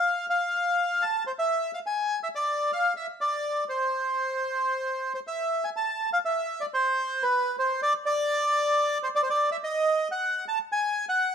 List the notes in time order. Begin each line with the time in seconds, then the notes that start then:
Already playing: F5
0.30 F5
1.02 A5
1.27 C5
1.39 E5
1.74 F5
1.86 G#5
2.23 E5
2.35 D5
2.72 F5
2.97 E5
3.21 D5
3.69 C5
5.14 C5
5.27 E5
5.64 G#5
5.77 A5
6.13 F5
6.25 E5
6.61 D5
6.74 C5
7.23 B4
7.59 C5
7.83 D5
8.06 D5
9.03 C5
9.15 D5
9.23 C5
9.30 D5
9.52 E5
9.64 D#5
10.12 F#5
10.48 A5
10.72 G#5
11.09 F#5